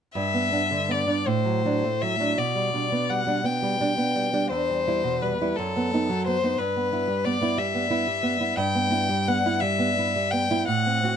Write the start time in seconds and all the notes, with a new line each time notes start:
0.15 G2 E5
0.34 B3
0.53 B3 D4
0.71 D3
0.89 B3 D5
1.06 B3 D4
1.26 A2 C5
1.45 F#3
1.65 F#3 D4
1.84 A3
2.02 F#3 E5
2.20 F#3 D4
2.38 B2 D5
2.55 G3
2.73 G3 D4
2.92 B3
3.10 G3 F#5
3.27 G3 D4
3.44 B3 G5
3.62 G3
3.80 G3 D4
3.98 B3
4.16 G3
4.33 G3 D4
4.50 E2 C5
4.70 G3
4.87 G3 E4
5.04 B2
5.22 G3 B4
5.41 G3 E4
5.57 F#2 A4
5.76 B3
5.94 B3 D#4
6.09 F#3
6.27 B3 C5
6.44 B3 D#4
6.59 G2 B4
6.76 B3
6.92 B3 E4
7.07 G3
7.25 B3 D5
7.41 B3 E4
7.58 G3 E5
7.75 B3
7.90 B3 E4
8.07 G3
8.23 B3
8.40 B3 E4
8.57 G2 G5
8.75 B3
8.90 B3 E4
9.09 G3
9.28 B3 F#5
9.46 B3 E4
9.60 G3 E5
9.79 B3
9.98 B3 E4
10.16 G3
10.31 B3 G5
10.50 B3 E4
10.68 A2 F#5
10.87 C4
11.03 C4 F#4